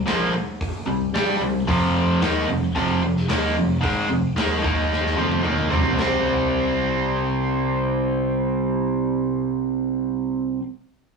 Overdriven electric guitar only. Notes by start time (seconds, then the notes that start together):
0.06 A#2 F3 A#3
0.86 C3 G3
1.14 G3 D4 G4
1.41 C3 G3
1.67 F2 C3 F3
2.22 D#3 A#3 D#4
2.48 F2 C3
2.75 F2 C3 F3
3.02 F2 C3
3.28 D#3 A#3 D#4
3.55 F2 C3
3.81 G#2 D#3 G#3
4.08 F2 C3
4.36 D#3 A#3 D#4
4.62 D#3 A#3 D#4
5.15 F2 C3 F3
5.43 D#3 A#3 D#4
5.70 C3 G3 C4
5.97 C3 G3 C4